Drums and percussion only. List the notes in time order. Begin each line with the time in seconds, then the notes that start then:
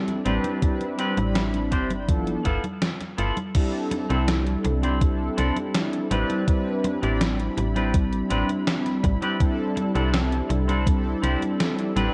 0.08 closed hi-hat, high conga
0.26 closed hi-hat
0.44 closed hi-hat, high conga
0.62 kick, closed hi-hat, high conga
0.81 closed hi-hat, high conga
0.99 closed hi-hat
1.17 closed hi-hat, high conga
1.35 snare, closed hi-hat, high conga
1.54 closed hi-hat, high conga
1.72 kick, closed hi-hat
1.91 closed hi-hat, high conga
2.09 kick, closed hi-hat, high conga
2.27 closed hi-hat, high conga
2.45 kick, closed hi-hat
2.64 closed hi-hat, high conga
2.82 snare, closed hi-hat, high conga
3.00 snare, closed hi-hat, high conga
3.18 closed hi-hat
3.37 closed hi-hat, high conga
3.55 kick, closed hi-hat, crash, high conga
3.91 closed hi-hat, high conga
4.10 closed hi-hat, high conga
4.28 snare, closed hi-hat, high conga
4.47 closed hi-hat
4.65 closed hi-hat, high conga
4.83 closed hi-hat, high conga
5.01 kick, closed hi-hat, high conga
5.38 closed hi-hat, high conga
5.57 closed hi-hat, high conga
5.75 snare, closed hi-hat, high conga
5.93 closed hi-hat
6.11 closed hi-hat, high conga
6.30 closed hi-hat, high conga
6.48 kick, closed hi-hat
6.84 closed hi-hat, high conga
7.03 closed hi-hat, high conga
7.21 snare, closed hi-hat, high conga
7.39 closed hi-hat
7.57 closed hi-hat, high conga
7.76 closed hi-hat, high conga
7.94 kick, closed hi-hat, high conga
8.13 closed hi-hat
8.30 closed hi-hat, high conga
8.49 closed hi-hat, high conga
8.67 snare, closed hi-hat, high conga
8.86 snare, closed hi-hat
9.04 kick, closed hi-hat, high conga
9.22 closed hi-hat, high conga
9.40 kick, closed hi-hat
9.77 closed hi-hat, high conga
9.96 closed hi-hat, high conga
10.14 snare, closed hi-hat, high conga
10.32 closed hi-hat
10.50 closed hi-hat, high conga
10.69 closed hi-hat, high conga
10.87 kick, closed hi-hat, high conga
11.24 closed hi-hat, high conga
11.42 closed hi-hat, high conga
11.60 snare, closed hi-hat, high conga
11.79 closed hi-hat
11.97 closed hi-hat, high conga